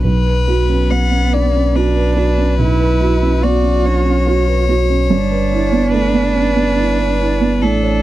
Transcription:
0.04 felt piano B1, sub bass B1, violin B4
0.26 felt piano B4
0.48 cello B3, felt piano F#4
0.69 felt piano C#4
0.90 felt piano B3, violin F#5
1.11 felt piano C#4
1.33 felt piano D4, violin D5
1.54 felt piano C#4
1.75 cello D4, felt piano F#4, violin B4
1.96 felt piano B4
2.16 felt piano F#4, violin B4
2.38 felt piano C#4
2.59 felt piano B1, cello E4
2.80 felt piano B4
3.00 felt piano F#4
3.22 felt piano C#4
3.43 felt piano B3, cello F#4, violin D5
3.64 felt piano C#4
3.85 felt piano D4, violin C#5
4.06 felt piano C#4
4.27 felt piano F#4
4.47 felt piano B4
4.69 felt piano F#4
4.89 felt piano C#4
5.10 sub bass G1, felt piano G2, cello D4
5.31 felt piano B4
5.52 felt piano E4
5.72 felt piano B3
5.93 felt piano A3, violin B4
6.13 felt piano B3
6.34 felt piano C#4
6.55 felt piano B3
6.77 felt piano E4
6.98 felt piano B4
7.19 felt piano E4
7.41 felt piano B3
7.62 sub bass A1, felt piano A2, cello D4, violin A4
7.83 felt piano C#5

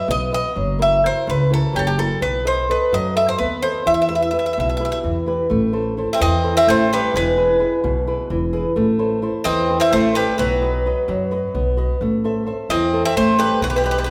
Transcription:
Already playing: nylon-string guitar F#4 B4 D#5
0.08 upright bass B1, nylon-string guitar B3, bouzouki D#5
0.31 nylon-string guitar F#4 B4 D#5, bouzouki D#5
0.56 upright bass F#1, nylon-string guitar F#3
0.79 nylon-string guitar E4 F#4 A#4, bouzouki E5
1.03 nylon-string guitar E4 F#4 A#4, bouzouki C5
1.27 upright bass C#2, nylon-string guitar C#3, bouzouki B4
1.50 nylon-string guitar E4 F#4 A#4, bouzouki A4
1.73 upright bass F#1, nylon-string guitar F#3, bouzouki G4
1.79 bouzouki A4
1.87 bouzouki G4
1.98 nylon-string guitar E4 F#4 A#4, bouzouki A4
2.21 upright bass B1, nylon-string guitar B3, bouzouki B4
2.45 nylon-string guitar A4 B4 D#5, bouzouki C5
2.69 nylon-string guitar A4 B4 D#5, bouzouki B4
2.92 upright bass F#2, nylon-string guitar F#3, bouzouki D#5
3.15 nylon-string guitar A4 B4 D#5, bouzouki E5
3.29 bouzouki C5
3.38 upright bass D#2, nylon-string guitar B3, bouzouki B4
3.62 nylon-string guitar A4 B4 D#5, bouzouki C5
3.86 upright bass E2, nylon-string guitar E3, bouzouki E5
3.94 bouzouki E5
4.02 bouzouki E5
4.09 nylon-string guitar E4 G4 B4, bouzouki E5
4.15 bouzouki E5
4.22 bouzouki E5
4.31 nylon-string guitar E4 G4 B4, bouzouki E5
4.39 bouzouki E5
4.46 bouzouki E5
4.53 bouzouki E5
4.57 upright bass B1, nylon-string guitar B2, bouzouki E5
4.69 bouzouki E5
4.77 nylon-string guitar E4 G4 B4, bouzouki E5
4.85 bouzouki E5
4.92 bouzouki E5
5.03 upright bass E2, nylon-string guitar E3
5.26 nylon-string guitar E4 G4 B4
5.50 upright bass A1, nylon-string guitar A3
5.73 nylon-string guitar E4 A4 C5
5.97 nylon-string guitar E4 A4 C5
6.13 bouzouki C4 E5
6.20 upright bass E2, nylon-string guitar E3, bouzouki C4 D#5
6.44 nylon-string guitar E4 A4 C5
6.57 bouzouki C4 E5
6.67 upright bass A1, nylon-string guitar A3, bouzouki A3 C5
6.90 bouzouki G3 B4, nylon-string guitar E4 A4 C5
7.14 upright bass E1, nylon-string guitar E3, bouzouki G#3 B4
7.37 nylon-string guitar E4 G#4 B4
7.59 nylon-string guitar E4 G#4 B4
7.84 upright bass B1, nylon-string guitar B2
8.07 nylon-string guitar E4 G#4 B4
8.30 upright bass E1, nylon-string guitar E3
8.53 nylon-string guitar E4 G#4 B4
8.76 upright bass A1, nylon-string guitar A3
8.99 nylon-string guitar E4 A4 C5
9.22 nylon-string guitar E4 A4 C5
9.44 upright bass E2, nylon-string guitar E3, bouzouki C4 D#5
9.69 nylon-string guitar E4 A4 C5
9.80 bouzouki C4 E5
9.92 upright bass A1, nylon-string guitar A3, bouzouki A3 C5
10.15 bouzouki G3 B4, nylon-string guitar E4 A4 C5
10.38 upright bass B1, bouzouki F#3 B4, nylon-string guitar B3
10.62 nylon-string guitar F#4 B4 D#5
10.86 nylon-string guitar F#4 B4 D#5
11.08 upright bass F#2, nylon-string guitar F#3
11.31 nylon-string guitar F#4 B4 D#5
11.54 upright bass B1, nylon-string guitar B3
11.77 nylon-string guitar F#4 B4 D#5
12.01 upright bass A1, nylon-string guitar A3
12.24 nylon-string guitar A4 C5 E5
12.46 nylon-string guitar A4 C5 E5
12.69 upright bass E2, nylon-string guitar E3, bouzouki C4 D#5
12.93 nylon-string guitar A4 C5 E5
13.05 bouzouki C4 E5
13.16 upright bass A1, nylon-string guitar A3, bouzouki A3 C5
13.38 bouzouki G3 B4, nylon-string guitar A4 C5 E5
13.61 upright bass B1, bouzouki F#3 B4, nylon-string guitar B3
13.70 bouzouki G3 B4
13.76 bouzouki G3 B4
13.84 bouzouki G3 B4, nylon-string guitar F#4 B4 D#5
13.91 bouzouki G3 B4
13.98 bouzouki G3 B4
14.04 bouzouki G3 B4

